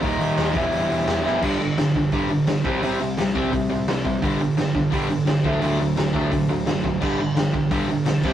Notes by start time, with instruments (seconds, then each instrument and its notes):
0.02 picked electric bass D#2, overdriven electric guitar D#3 G3 A#3 D#4, kick, open hi-hat
0.19 picked electric bass D#3, open hi-hat
0.37 picked electric bass D#2, snare, open hi-hat
0.54 picked electric bass E1, overdriven electric guitar E2 B2 E3 G3 B3 E4, kick, open hi-hat
0.72 picked electric bass E1, open hi-hat
0.90 picked electric bass E1, open hi-hat
1.07 picked electric bass E2, snare, open hi-hat
1.23 picked electric bass F#1, overdriven electric guitar E2 B2 E3 G3 B3 E4, snare
1.42 picked electric bass G1, overdriven electric guitar G2 D3 G3, kick, crash
1.60 overdriven electric guitar G2 D3
1.77 picked electric bass G1, overdriven electric guitar G2 D3, snare, open hi-hat
1.95 overdriven electric guitar G2 D3, kick
2.12 picked electric bass G2, overdriven electric guitar G2 D3 G3, kick, open hi-hat
2.28 picked electric bass G1, overdriven electric guitar G2 D3
2.47 picked electric bass G1, overdriven electric guitar G2 D3, snare, open hi-hat
2.64 picked electric bass C2, overdriven electric guitar C3 G3 C4, kick
2.83 picked electric bass C2, overdriven electric guitar C3 G3 C4, open hi-hat
3.00 overdriven electric guitar C3 G3
3.18 picked electric bass C2, overdriven electric guitar C3 G3, snare, open hi-hat
3.35 overdriven electric guitar C3 G3 C4, kick
3.52 overdriven electric guitar C3 G3, picked electric bass C3, kick, open hi-hat
3.69 picked electric bass C2, overdriven electric guitar C3 G3
3.87 picked electric bass C2, overdriven electric guitar C3 G3, snare, open hi-hat
4.05 overdriven electric guitar C3 G3, kick
4.22 picked electric bass G1, overdriven electric guitar G2 D3 G3, kick, open hi-hat
4.40 overdriven electric guitar G2 D3
4.57 picked electric bass G1, overdriven electric guitar G2 D3, snare, open hi-hat
4.75 overdriven electric guitar G2 D3, kick
4.92 picked electric bass G2, overdriven electric guitar G2 D3 G3, kick, open hi-hat
5.10 picked electric bass G1, overdriven electric guitar G2 D3
5.26 picked electric bass G1, overdriven electric guitar G2 D3, snare, open hi-hat
5.44 picked electric bass D2, overdriven electric guitar D3 F#3 A3 D4, kick
5.61 picked electric bass D2, overdriven electric guitar D3 F#3 A3 D4, open hi-hat
5.79 overdriven electric guitar D3 F#3 A3
5.96 picked electric bass D2, overdriven electric guitar D3 F#3 A3, snare, open hi-hat
6.14 overdriven electric guitar D3 F#3 A3 D4, kick
6.32 overdriven electric guitar D3 F#3 A3, picked electric bass D3, kick, open hi-hat
6.49 picked electric bass D2, overdriven electric guitar D3 F#3 A3
6.66 picked electric bass F#1, overdriven electric guitar D3 F#3 A3, snare, open hi-hat
6.83 overdriven electric guitar D3 F#3 A3, kick
7.02 picked electric bass G1, overdriven electric guitar G2 D3 G3, kick, crash
7.20 overdriven electric guitar G2 D3
7.36 picked electric bass G1, overdriven electric guitar G2 D3, snare, open hi-hat
7.53 overdriven electric guitar G2 D3, kick
7.71 overdriven electric guitar G2 D3 G3, picked electric bass G2, kick, open hi-hat
7.88 picked electric bass G1, overdriven electric guitar G2 D3
8.05 picked electric bass B1, overdriven electric guitar G2 D3, snare, open hi-hat
8.23 picked electric bass C2, overdriven electric guitar C3 G3 C4, kick, crash